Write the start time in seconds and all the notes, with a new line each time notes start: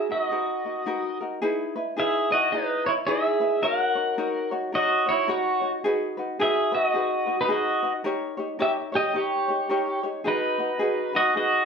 0.10 D#4 F#4 A#4 D#5
0.31 D#4 F#4 A#4 B4
0.64 D#4 F#4 A#4
0.86 D#4 F#4 A#4 B4
1.20 D#4 F#4 A#4
1.42 D#4 E4 G#4 B4
1.76 D#4 E4 B4
1.97 D#4 E4 G#4 B4 E5
2.31 D#4 E4 F#4 B4 D#5
2.52 D#4 E4 G#4 B4
2.86 D#4 E4 B4 C#5
3.07 D#4 E4 G#4 B4 E5
3.40 D#4 E4 B4
3.62 D#4 F#4 A#4 C#5 F#5
3.95 D#4 F#4 C#5
4.18 D#4 F#4 A#4 C#5
4.51 D#4 F#4 C#5
4.72 D#4 F#4 A#4 C#5 D#5
5.06 D#4 E4 F#4 C#5
5.28 D#4 F#4 A#4 C#5
5.62 D#4 F#4 C#5
5.84 D#4 F#4 G#4 B4
6.17 D#4 F#4 B4
6.39 D#4 F#4 G#4 B4 E5
6.72 D#4 F#4 B4 D#5
6.94 D#4 F#4 G#4 B4
7.26 D#4 F#4 B4
7.41 D#4 B4
7.48 D#4 F#4 G#4 B4 D#5
7.83 D#4 F#4 B4
8.04 D#4 G4 A#4 C#5
8.37 D#4 G4 C#5
8.59 D#4 G4 A#4 C#5 E5
8.92 D#4 G4 C#5
8.96 D#5
9.14 D#4 G4 A#4 C#5
9.18 C#5
9.48 D#4 G4 C#5
9.69 D#4 G4 A#4 C#5
10.03 D#4 G4 C#5
10.24 D#4 F#4 G#4 B4
10.58 D#4 F#4 B4
10.79 D#4 F#4 G#4 B4
11.13 D#4 F#4 B4 D#5
11.35 D#4 F#4 G#4 B4 D#5